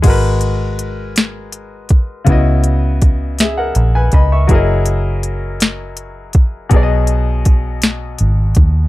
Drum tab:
CC |x-----|------|------|------|
HH |xxxxxx|xxxxxx|xxxxxx|xxxxxx|
SD |---o--|---o--|---o--|---o--|
BD |o----o|o-o--o|o----o|o-o--o|